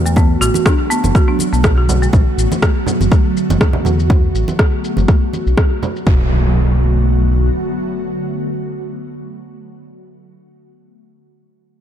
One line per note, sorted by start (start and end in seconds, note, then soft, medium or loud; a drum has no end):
0.00 0.36 E2 medium
0.00 6.03 D3 medium
0.00 6.03 F#3 medium
0.00 6.03 A3 medium
0.00 6.03 B3 medium
0.00 6.03 F#4 medium
0.00 impact medium
0.06 0.15 A3 medium
0.06 shaker medium
0.16 0.29 B3 medium
0.16 kick loud
0.16 high conga loud
0.16 shaker soft
0.41 0.50 A1 medium
0.41 0.48 F#4 loud
0.41 shaker medium
0.54 high conga medium
0.54 shaker medium
0.66 0.78 D4 loud
0.66 kick loud
0.66 cross-stick loud
0.66 shaker soft
0.90 1.03 B3 loud
0.90 shaker medium
1.04 1.11 F#1 loud
1.04 high conga medium
1.04 shaker medium
1.15 1.28 F#4 medium
1.15 kick loud
1.15 cross-stick medium
1.15 shaker soft
1.28 1.38 D4 medium
1.39 high conga medium
1.39 shaker medium
1.53 2.08 B1 medium
1.53 1.63 B3 medium
1.53 shaker medium
1.63 kick loud
1.63 cross-stick loud
1.63 high conga medium
1.63 shaker soft
1.78 1.87 F#4 medium
1.89 low conga loud
1.89 shaker medium
2.02 2.12 A3 medium
2.02 shaker medium
2.13 2.22 B1 loud
2.13 kick loud
2.13 high conga loud
2.13 shaker soft
2.38 2.47 A1 medium
2.38 shaker medium
2.52 high conga medium
2.52 shaker medium
2.62 kick loud
2.62 cross-stick loud
2.62 shaker soft
2.87 low conga medium
2.87 shaker medium
3.00 3.08 F#1 loud
3.00 high conga medium
3.00 shaker soft
3.11 kick loud
3.11 cross-stick medium
3.11 high conga medium
3.11 shaker soft
3.37 shaker medium
3.49 3.57 F#1 medium
3.49 high conga loud
3.49 shaker soft
3.61 kick loud
3.61 cross-stick loud
3.61 low conga medium
3.61 shaker soft
3.73 low conga loud
3.85 4.29 E2 medium
3.85 high conga medium
3.85 low conga medium
3.85 shaker medium
4.00 shaker medium
4.10 kick loud
4.10 high conga loud
4.10 shaker soft
4.34 4.44 A1 medium
4.34 shaker medium
4.48 high conga medium
4.48 shaker medium
4.59 kick loud
4.59 cross-stick loud
4.59 shaker soft
4.84 shaker medium
4.97 5.05 F#1 loud
4.97 high conga medium
4.97 shaker soft
5.08 kick loud
5.08 cross-stick medium
5.08 shaker soft
5.33 high conga medium
5.33 shaker medium
5.46 5.54 B1 medium
5.46 shaker medium
5.58 kick loud
5.58 cross-stick loud
5.58 high conga medium
5.58 shaker soft
5.83 low conga medium
5.83 shaker medium
5.96 shaker medium
6.07 7.50 B1 medium
6.07 9.59 D3 medium
6.07 9.59 F#3 medium
6.07 9.59 A3 medium
6.07 9.59 B3 medium
6.07 9.59 F#4 medium
6.07 kick loud
6.07 impact medium